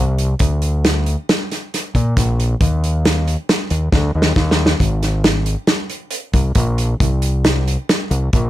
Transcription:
Already playing: C2
0.18 closed hi-hat
0.39 D2, kick, closed hi-hat
0.62 closed hi-hat
0.85 snare, closed hi-hat
1.06 closed hi-hat
1.29 snare, closed hi-hat
1.51 snare, closed hi-hat
1.74 snare, closed hi-hat
1.95 A#2, kick, closed hi-hat
2.17 A#1, kick, snare, closed hi-hat
2.40 closed hi-hat
2.61 D#2, kick, closed hi-hat
2.84 closed hi-hat
3.05 snare, closed hi-hat
3.28 closed hi-hat
3.49 snare, closed hi-hat
3.70 D#2, closed hi-hat
3.92 D2, kick, snare
4.15 D#2
4.22 snare
4.36 D#2, kick, snare
4.51 snare
4.66 snare
4.80 G#1, kick, closed hi-hat
5.03 snare, closed hi-hat
5.24 snare, closed hi-hat
5.46 closed hi-hat
5.67 snare, closed hi-hat
5.90 closed hi-hat
6.11 closed hi-hat
6.33 C2, kick, closed hi-hat
6.55 A#1, kick, closed hi-hat
6.78 closed hi-hat
7.00 C2, kick, closed hi-hat
7.22 closed hi-hat
7.45 snare, closed hi-hat
7.68 closed hi-hat
7.89 snare, closed hi-hat
8.11 C2, closed hi-hat
8.33 A#1, kick, closed hi-hat

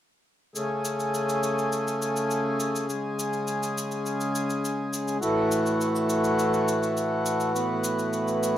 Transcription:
0.56 C#3 A3 G#4, cabasa
0.85 cabasa
1.00 cabasa
1.14 cabasa
1.29 cabasa
1.43 cabasa
1.58 cabasa
1.72 cabasa
1.87 cabasa
2.02 cabasa
2.16 cabasa
2.31 cabasa
2.60 cabasa
2.75 cabasa
2.89 G#3, cabasa
3.19 cabasa
3.33 cabasa
3.47 cabasa
3.63 cabasa
3.78 cabasa
3.91 cabasa
4.06 cabasa
4.20 cabasa
4.35 cabasa
4.50 cabasa
4.65 cabasa
4.93 cabasa
5.08 cabasa
5.21 A2 E3 A3 F#4, cabasa
5.51 cabasa
5.66 cabasa
5.81 cabasa
5.96 cabasa
6.09 cabasa
6.24 cabasa
6.39 cabasa
6.54 cabasa
6.68 cabasa
6.83 cabasa
6.97 cabasa
7.26 cabasa
7.40 cabasa
7.55 B3, cabasa
7.84 cabasa
7.99 cabasa
8.13 cabasa
8.28 cabasa
8.43 cabasa

